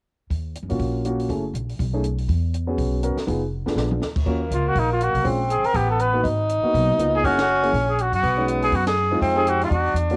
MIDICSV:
0, 0, Header, 1, 7, 480
1, 0, Start_track
1, 0, Key_signature, -6, "minor"
1, 0, Tempo, 247525
1, 595, Time_signature, 4, 2, 24, 8
1, 19712, End_track
2, 0, Start_track
2, 0, Title_t, "Trumpet"
2, 0, Program_c, 0, 56
2, 8804, Note_on_c, 0, 65, 60
2, 9078, Note_on_c, 0, 66, 71
2, 9107, Note_off_c, 0, 65, 0
2, 9289, Note_on_c, 0, 63, 60
2, 9318, Note_off_c, 0, 66, 0
2, 9541, Note_off_c, 0, 63, 0
2, 9558, Note_on_c, 0, 65, 61
2, 9760, Note_on_c, 0, 66, 63
2, 9789, Note_off_c, 0, 65, 0
2, 10215, Note_off_c, 0, 66, 0
2, 10690, Note_on_c, 0, 68, 63
2, 10974, Note_on_c, 0, 70, 82
2, 11003, Note_off_c, 0, 68, 0
2, 11177, Note_on_c, 0, 67, 71
2, 11206, Note_off_c, 0, 70, 0
2, 11445, Note_off_c, 0, 67, 0
2, 11460, Note_on_c, 0, 69, 64
2, 11655, Note_on_c, 0, 71, 64
2, 11684, Note_off_c, 0, 69, 0
2, 12123, Note_off_c, 0, 71, 0
2, 13884, Note_on_c, 0, 68, 76
2, 14076, Note_on_c, 0, 66, 65
2, 14106, Note_off_c, 0, 68, 0
2, 14336, Note_off_c, 0, 66, 0
2, 14365, Note_on_c, 0, 66, 70
2, 14972, Note_off_c, 0, 66, 0
2, 15306, Note_on_c, 0, 68, 64
2, 15539, Note_on_c, 0, 66, 67
2, 15568, Note_off_c, 0, 68, 0
2, 15781, Note_off_c, 0, 66, 0
2, 15793, Note_on_c, 0, 66, 76
2, 16406, Note_off_c, 0, 66, 0
2, 16751, Note_on_c, 0, 68, 85
2, 16969, Note_on_c, 0, 66, 69
2, 16998, Note_off_c, 0, 68, 0
2, 17191, Note_off_c, 0, 66, 0
2, 17203, Note_on_c, 0, 68, 67
2, 17830, Note_off_c, 0, 68, 0
2, 18165, Note_on_c, 0, 68, 66
2, 18394, Note_on_c, 0, 66, 65
2, 18423, Note_off_c, 0, 68, 0
2, 18655, Note_off_c, 0, 66, 0
2, 18698, Note_on_c, 0, 66, 74
2, 19300, Note_off_c, 0, 66, 0
2, 19712, End_track
3, 0, Start_track
3, 0, Title_t, "Grand piano"
3, 0, Program_c, 1, 0
3, 1341, Note_on_c, 1, 58, 51
3, 1356, Note_on_c, 1, 61, 46
3, 1362, Note_on_c, 1, 66, 49
3, 1366, Note_on_c, 1, 65, 47
3, 1986, Note_off_c, 1, 58, 0
3, 1994, Note_off_c, 1, 61, 0
3, 1997, Note_off_c, 1, 66, 0
3, 1999, Note_off_c, 1, 65, 0
3, 2034, Note_on_c, 1, 61, 40
3, 2035, Note_on_c, 1, 58, 52
3, 2046, Note_on_c, 1, 65, 42
3, 2052, Note_on_c, 1, 66, 57
3, 2478, Note_off_c, 1, 61, 0
3, 2505, Note_on_c, 1, 57, 45
3, 2507, Note_on_c, 1, 61, 37
3, 2514, Note_off_c, 1, 58, 0
3, 2517, Note_on_c, 1, 64, 43
3, 2519, Note_off_c, 1, 65, 0
3, 2522, Note_off_c, 1, 66, 0
3, 2524, Note_on_c, 1, 68, 52
3, 2762, Note_off_c, 1, 57, 0
3, 2763, Note_off_c, 1, 61, 0
3, 2768, Note_off_c, 1, 64, 0
3, 2771, Note_off_c, 1, 68, 0
3, 3751, Note_on_c, 1, 57, 47
3, 3758, Note_on_c, 1, 61, 45
3, 3761, Note_on_c, 1, 63, 41
3, 3770, Note_on_c, 1, 68, 59
3, 3931, Note_off_c, 1, 57, 0
3, 3934, Note_off_c, 1, 61, 0
3, 3936, Note_off_c, 1, 63, 0
3, 3940, Note_off_c, 1, 68, 0
3, 5183, Note_on_c, 1, 59, 52
3, 5188, Note_on_c, 1, 61, 47
3, 5195, Note_on_c, 1, 66, 44
3, 5211, Note_on_c, 1, 68, 59
3, 5826, Note_off_c, 1, 59, 0
3, 5829, Note_off_c, 1, 61, 0
3, 5832, Note_off_c, 1, 66, 0
3, 5840, Note_off_c, 1, 68, 0
3, 5877, Note_on_c, 1, 59, 50
3, 5886, Note_on_c, 1, 66, 47
3, 5887, Note_on_c, 1, 61, 50
3, 5889, Note_on_c, 1, 70, 63
3, 6127, Note_off_c, 1, 59, 0
3, 6131, Note_off_c, 1, 66, 0
3, 6132, Note_off_c, 1, 61, 0
3, 6133, Note_off_c, 1, 70, 0
3, 6339, Note_on_c, 1, 59, 54
3, 6347, Note_on_c, 1, 63, 43
3, 6355, Note_on_c, 1, 65, 47
3, 6370, Note_on_c, 1, 68, 63
3, 6598, Note_off_c, 1, 59, 0
3, 6602, Note_off_c, 1, 63, 0
3, 6606, Note_off_c, 1, 65, 0
3, 6613, Note_off_c, 1, 68, 0
3, 7100, Note_on_c, 1, 59, 51
3, 7106, Note_on_c, 1, 62, 47
3, 7109, Note_on_c, 1, 65, 42
3, 7118, Note_on_c, 1, 68, 47
3, 7744, Note_off_c, 1, 59, 0
3, 7747, Note_off_c, 1, 62, 0
3, 7749, Note_off_c, 1, 65, 0
3, 7753, Note_off_c, 1, 68, 0
3, 8258, Note_on_c, 1, 58, 52
3, 8263, Note_on_c, 1, 61, 50
3, 8269, Note_on_c, 1, 65, 48
3, 8280, Note_on_c, 1, 66, 55
3, 8517, Note_off_c, 1, 58, 0
3, 8520, Note_off_c, 1, 61, 0
3, 8523, Note_off_c, 1, 65, 0
3, 8528, Note_off_c, 1, 66, 0
3, 10159, Note_on_c, 1, 56, 42
3, 10162, Note_on_c, 1, 60, 43
3, 10173, Note_on_c, 1, 61, 43
3, 10179, Note_on_c, 1, 65, 52
3, 10428, Note_off_c, 1, 56, 0
3, 10429, Note_off_c, 1, 60, 0
3, 10435, Note_off_c, 1, 61, 0
3, 10438, Note_off_c, 1, 65, 0
3, 11893, Note_on_c, 1, 58, 57
3, 11897, Note_on_c, 1, 59, 57
3, 11911, Note_on_c, 1, 63, 53
3, 11915, Note_on_c, 1, 66, 66
3, 12081, Note_off_c, 1, 58, 0
3, 12084, Note_off_c, 1, 59, 0
3, 12090, Note_off_c, 1, 63, 0
3, 12093, Note_off_c, 1, 66, 0
3, 12856, Note_on_c, 1, 58, 59
3, 12868, Note_on_c, 1, 59, 47
3, 12874, Note_on_c, 1, 63, 45
3, 12875, Note_on_c, 1, 66, 62
3, 13504, Note_off_c, 1, 58, 0
3, 13509, Note_off_c, 1, 59, 0
3, 13512, Note_off_c, 1, 63, 0
3, 13513, Note_off_c, 1, 66, 0
3, 13556, Note_on_c, 1, 58, 48
3, 13556, Note_on_c, 1, 59, 46
3, 13565, Note_on_c, 1, 63, 43
3, 13583, Note_on_c, 1, 65, 58
3, 14010, Note_off_c, 1, 58, 0
3, 14034, Note_off_c, 1, 59, 0
3, 14039, Note_off_c, 1, 63, 0
3, 14039, Note_on_c, 1, 58, 50
3, 14046, Note_on_c, 1, 64, 45
3, 14047, Note_off_c, 1, 65, 0
3, 14049, Note_on_c, 1, 61, 45
3, 14061, Note_on_c, 1, 68, 54
3, 14289, Note_off_c, 1, 58, 0
3, 14292, Note_off_c, 1, 64, 0
3, 14293, Note_off_c, 1, 61, 0
3, 14300, Note_off_c, 1, 68, 0
3, 14788, Note_on_c, 1, 58, 56
3, 14794, Note_on_c, 1, 61, 54
3, 14800, Note_on_c, 1, 64, 52
3, 14808, Note_on_c, 1, 68, 66
3, 14970, Note_off_c, 1, 58, 0
3, 14973, Note_off_c, 1, 61, 0
3, 14975, Note_off_c, 1, 64, 0
3, 14980, Note_off_c, 1, 68, 0
3, 16226, Note_on_c, 1, 56, 55
3, 16240, Note_on_c, 1, 61, 52
3, 16247, Note_on_c, 1, 63, 53
3, 16251, Note_on_c, 1, 66, 59
3, 16869, Note_off_c, 1, 56, 0
3, 16876, Note_off_c, 1, 61, 0
3, 16880, Note_off_c, 1, 63, 0
3, 16882, Note_off_c, 1, 66, 0
3, 17659, Note_on_c, 1, 56, 68
3, 17673, Note_on_c, 1, 60, 61
3, 17676, Note_on_c, 1, 63, 65
3, 17685, Note_on_c, 1, 65, 71
3, 18098, Note_off_c, 1, 56, 0
3, 18109, Note_off_c, 1, 60, 0
3, 18116, Note_off_c, 1, 63, 0
3, 18127, Note_on_c, 1, 56, 43
3, 18138, Note_on_c, 1, 60, 43
3, 18145, Note_on_c, 1, 63, 49
3, 18152, Note_on_c, 1, 67, 55
3, 18319, Note_off_c, 1, 65, 0
3, 18780, Note_off_c, 1, 56, 0
3, 18785, Note_off_c, 1, 60, 0
3, 18789, Note_off_c, 1, 63, 0
3, 18793, Note_off_c, 1, 67, 0
3, 19597, Note_on_c, 1, 58, 69
3, 19605, Note_on_c, 1, 65, 61
3, 19606, Note_on_c, 1, 61, 58
3, 19609, Note_on_c, 1, 66, 68
3, 19712, Note_off_c, 1, 58, 0
3, 19712, Note_off_c, 1, 61, 0
3, 19712, Note_off_c, 1, 65, 0
3, 19712, Note_off_c, 1, 66, 0
3, 19712, End_track
4, 0, Start_track
4, 0, Title_t, "Tenor saxophone"
4, 0, Program_c, 2, 66
4, 8272, Note_on_c, 2, 58, 62
4, 10194, Note_on_c, 2, 60, 72
4, 10223, Note_off_c, 2, 58, 0
4, 11137, Note_on_c, 2, 59, 67
4, 11166, Note_off_c, 2, 60, 0
4, 12086, Note_off_c, 2, 59, 0
4, 12098, Note_on_c, 2, 63, 94
4, 13948, Note_off_c, 2, 63, 0
4, 14042, Note_on_c, 2, 61, 81
4, 15681, Note_off_c, 2, 61, 0
4, 15944, Note_on_c, 2, 59, 64
4, 17272, Note_off_c, 2, 59, 0
4, 17867, Note_on_c, 2, 60, 78
4, 18691, Note_on_c, 2, 64, 65
4, 18720, Note_off_c, 2, 60, 0
4, 18812, Note_on_c, 2, 62, 78
4, 18841, Note_off_c, 2, 64, 0
4, 19712, Note_off_c, 2, 62, 0
4, 19712, End_track
5, 0, Start_track
5, 0, Title_t, "Upright bass"
5, 0, Program_c, 3, 32
5, 580, Note_on_c, 3, 39, 54
5, 1181, Note_off_c, 3, 39, 0
5, 1213, Note_on_c, 3, 42, 51
5, 1371, Note_off_c, 3, 42, 0
5, 1380, Note_on_c, 3, 46, 53
5, 1521, Note_off_c, 3, 46, 0
5, 1533, Note_on_c, 3, 34, 62
5, 2454, Note_off_c, 3, 34, 0
5, 2494, Note_on_c, 3, 30, 56
5, 2949, Note_off_c, 3, 30, 0
5, 2976, Note_on_c, 3, 34, 56
5, 3430, Note_off_c, 3, 34, 0
5, 3473, Note_on_c, 3, 35, 70
5, 4384, Note_off_c, 3, 35, 0
5, 4429, Note_on_c, 3, 40, 69
5, 5342, Note_off_c, 3, 40, 0
5, 5393, Note_on_c, 3, 35, 68
5, 6099, Note_off_c, 3, 35, 0
5, 6345, Note_on_c, 3, 29, 59
5, 7055, Note_off_c, 3, 29, 0
5, 7102, Note_on_c, 3, 41, 51
5, 7270, Note_off_c, 3, 41, 0
5, 7282, Note_on_c, 3, 34, 61
5, 7741, Note_off_c, 3, 34, 0
5, 7767, Note_on_c, 3, 38, 50
5, 8224, Note_off_c, 3, 38, 0
5, 8264, Note_on_c, 3, 39, 56
5, 8713, Note_off_c, 3, 39, 0
5, 8738, Note_on_c, 3, 37, 64
5, 9190, Note_off_c, 3, 37, 0
5, 9213, Note_on_c, 3, 34, 71
5, 9929, Note_off_c, 3, 34, 0
5, 9969, Note_on_c, 3, 35, 53
5, 10164, Note_off_c, 3, 35, 0
5, 10174, Note_on_c, 3, 34, 65
5, 10890, Note_off_c, 3, 34, 0
5, 11131, Note_on_c, 3, 33, 72
5, 12053, Note_off_c, 3, 33, 0
5, 12095, Note_on_c, 3, 32, 70
5, 12811, Note_off_c, 3, 32, 0
5, 13073, Note_on_c, 3, 35, 73
5, 13519, Note_off_c, 3, 35, 0
5, 13539, Note_on_c, 3, 37, 57
5, 13992, Note_off_c, 3, 37, 0
5, 14036, Note_on_c, 3, 30, 68
5, 14947, Note_off_c, 3, 30, 0
5, 14984, Note_on_c, 3, 34, 72
5, 15696, Note_off_c, 3, 34, 0
5, 15745, Note_on_c, 3, 42, 57
5, 15934, Note_off_c, 3, 42, 0
5, 15950, Note_on_c, 3, 35, 63
5, 16863, Note_off_c, 3, 35, 0
5, 16907, Note_on_c, 3, 42, 75
5, 17822, Note_off_c, 3, 42, 0
5, 17864, Note_on_c, 3, 41, 67
5, 18781, Note_off_c, 3, 41, 0
5, 18822, Note_on_c, 3, 40, 72
5, 19262, Note_off_c, 3, 40, 0
5, 19273, Note_on_c, 3, 40, 55
5, 19712, Note_off_c, 3, 40, 0
5, 19712, End_track
6, 0, Start_track
6, 0, Title_t, "Muted upright bass strokes"
6, 6126, Note_on_c, 9, 29, 30
6, 6320, Note_off_c, 9, 29, 0
6, 10914, Note_on_c, 9, 29, 32
6, 11108, Note_off_c, 9, 29, 0
6, 12864, Note_on_c, 9, 29, 33
6, 13058, Note_off_c, 9, 29, 0
6, 19712, End_track
7, 0, Start_track
7, 0, Title_t, "Drums"
7, 588, Note_on_c, 9, 36, 25
7, 593, Note_on_c, 9, 46, 29
7, 781, Note_off_c, 9, 36, 0
7, 787, Note_off_c, 9, 46, 0
7, 1072, Note_on_c, 9, 42, 37
7, 1266, Note_off_c, 9, 42, 0
7, 1348, Note_on_c, 9, 46, 27
7, 1540, Note_off_c, 9, 46, 0
7, 1540, Note_on_c, 9, 46, 31
7, 1542, Note_on_c, 9, 36, 27
7, 1734, Note_off_c, 9, 46, 0
7, 1736, Note_off_c, 9, 36, 0
7, 2029, Note_on_c, 9, 42, 36
7, 2223, Note_off_c, 9, 42, 0
7, 2313, Note_on_c, 9, 46, 28
7, 2507, Note_off_c, 9, 46, 0
7, 2507, Note_on_c, 9, 36, 23
7, 2511, Note_on_c, 9, 46, 32
7, 2701, Note_off_c, 9, 36, 0
7, 2705, Note_off_c, 9, 46, 0
7, 2999, Note_on_c, 9, 42, 41
7, 3193, Note_off_c, 9, 42, 0
7, 3280, Note_on_c, 9, 46, 26
7, 3474, Note_off_c, 9, 46, 0
7, 3477, Note_on_c, 9, 36, 27
7, 3487, Note_on_c, 9, 46, 33
7, 3671, Note_off_c, 9, 36, 0
7, 3681, Note_off_c, 9, 46, 0
7, 3952, Note_on_c, 9, 42, 37
7, 4146, Note_off_c, 9, 42, 0
7, 4235, Note_on_c, 9, 46, 28
7, 4429, Note_off_c, 9, 46, 0
7, 4439, Note_on_c, 9, 46, 33
7, 4440, Note_on_c, 9, 36, 23
7, 4633, Note_off_c, 9, 46, 0
7, 4634, Note_off_c, 9, 36, 0
7, 4926, Note_on_c, 9, 42, 39
7, 5120, Note_off_c, 9, 42, 0
7, 5396, Note_on_c, 9, 36, 25
7, 5396, Note_on_c, 9, 46, 34
7, 5590, Note_off_c, 9, 36, 0
7, 5590, Note_off_c, 9, 46, 0
7, 5874, Note_on_c, 9, 42, 36
7, 6068, Note_off_c, 9, 42, 0
7, 6154, Note_on_c, 9, 38, 39
7, 6156, Note_on_c, 9, 46, 28
7, 6348, Note_off_c, 9, 38, 0
7, 6350, Note_off_c, 9, 46, 0
7, 6355, Note_on_c, 9, 36, 26
7, 6363, Note_on_c, 9, 46, 33
7, 6549, Note_off_c, 9, 36, 0
7, 6556, Note_off_c, 9, 46, 0
7, 7124, Note_on_c, 9, 38, 40
7, 7314, Note_off_c, 9, 38, 0
7, 7314, Note_on_c, 9, 38, 57
7, 7508, Note_off_c, 9, 38, 0
7, 7589, Note_on_c, 9, 47, 50
7, 7783, Note_off_c, 9, 47, 0
7, 7793, Note_on_c, 9, 38, 47
7, 7987, Note_off_c, 9, 38, 0
7, 8066, Note_on_c, 9, 49, 53
7, 8069, Note_on_c, 9, 36, 58
7, 8260, Note_off_c, 9, 49, 0
7, 8263, Note_off_c, 9, 36, 0
7, 8268, Note_on_c, 9, 36, 27
7, 8462, Note_off_c, 9, 36, 0
7, 8752, Note_on_c, 9, 42, 42
7, 8946, Note_off_c, 9, 42, 0
7, 9220, Note_on_c, 9, 46, 35
7, 9224, Note_on_c, 9, 36, 30
7, 9414, Note_off_c, 9, 46, 0
7, 9418, Note_off_c, 9, 36, 0
7, 9707, Note_on_c, 9, 42, 36
7, 9901, Note_off_c, 9, 42, 0
7, 9981, Note_on_c, 9, 46, 30
7, 10175, Note_off_c, 9, 46, 0
7, 10180, Note_on_c, 9, 46, 35
7, 10181, Note_on_c, 9, 36, 28
7, 10374, Note_off_c, 9, 46, 0
7, 10375, Note_off_c, 9, 36, 0
7, 10669, Note_on_c, 9, 42, 41
7, 10863, Note_off_c, 9, 42, 0
7, 10943, Note_on_c, 9, 46, 29
7, 11137, Note_off_c, 9, 46, 0
7, 11139, Note_on_c, 9, 36, 25
7, 11141, Note_on_c, 9, 46, 36
7, 11333, Note_off_c, 9, 36, 0
7, 11335, Note_off_c, 9, 46, 0
7, 11628, Note_on_c, 9, 42, 39
7, 11822, Note_off_c, 9, 42, 0
7, 12107, Note_on_c, 9, 36, 28
7, 12117, Note_on_c, 9, 46, 35
7, 12301, Note_off_c, 9, 36, 0
7, 12311, Note_off_c, 9, 46, 0
7, 12593, Note_on_c, 9, 42, 41
7, 12787, Note_off_c, 9, 42, 0
7, 13074, Note_on_c, 9, 36, 26
7, 13084, Note_on_c, 9, 46, 34
7, 13268, Note_off_c, 9, 36, 0
7, 13278, Note_off_c, 9, 46, 0
7, 13560, Note_on_c, 9, 42, 42
7, 13754, Note_off_c, 9, 42, 0
7, 14040, Note_on_c, 9, 36, 28
7, 14047, Note_on_c, 9, 46, 38
7, 14234, Note_off_c, 9, 36, 0
7, 14241, Note_off_c, 9, 46, 0
7, 14320, Note_on_c, 9, 38, 54
7, 14322, Note_on_c, 9, 51, 51
7, 14514, Note_off_c, 9, 38, 0
7, 14515, Note_off_c, 9, 51, 0
7, 14800, Note_on_c, 9, 46, 29
7, 14994, Note_off_c, 9, 46, 0
7, 14995, Note_on_c, 9, 36, 26
7, 15006, Note_on_c, 9, 46, 36
7, 15189, Note_off_c, 9, 36, 0
7, 15200, Note_off_c, 9, 46, 0
7, 15479, Note_on_c, 9, 42, 41
7, 15673, Note_off_c, 9, 42, 0
7, 15757, Note_on_c, 9, 46, 32
7, 15951, Note_off_c, 9, 46, 0
7, 15953, Note_on_c, 9, 36, 28
7, 15960, Note_on_c, 9, 46, 36
7, 16147, Note_off_c, 9, 36, 0
7, 16154, Note_off_c, 9, 46, 0
7, 16441, Note_on_c, 9, 42, 43
7, 16635, Note_off_c, 9, 42, 0
7, 16717, Note_on_c, 9, 46, 30
7, 16911, Note_off_c, 9, 46, 0
7, 16911, Note_on_c, 9, 36, 29
7, 16911, Note_on_c, 9, 46, 33
7, 17105, Note_off_c, 9, 36, 0
7, 17105, Note_off_c, 9, 46, 0
7, 17192, Note_on_c, 9, 38, 61
7, 17194, Note_on_c, 9, 51, 53
7, 17386, Note_off_c, 9, 38, 0
7, 17388, Note_off_c, 9, 51, 0
7, 17869, Note_on_c, 9, 36, 27
7, 17879, Note_on_c, 9, 46, 35
7, 18063, Note_off_c, 9, 36, 0
7, 18073, Note_off_c, 9, 46, 0
7, 18356, Note_on_c, 9, 42, 38
7, 18550, Note_off_c, 9, 42, 0
7, 18642, Note_on_c, 9, 46, 30
7, 18828, Note_on_c, 9, 36, 28
7, 18836, Note_off_c, 9, 46, 0
7, 18840, Note_on_c, 9, 46, 34
7, 19022, Note_off_c, 9, 36, 0
7, 19033, Note_off_c, 9, 46, 0
7, 19316, Note_on_c, 9, 42, 46
7, 19510, Note_off_c, 9, 42, 0
7, 19581, Note_on_c, 9, 46, 27
7, 19712, Note_off_c, 9, 46, 0
7, 19712, End_track
0, 0, End_of_file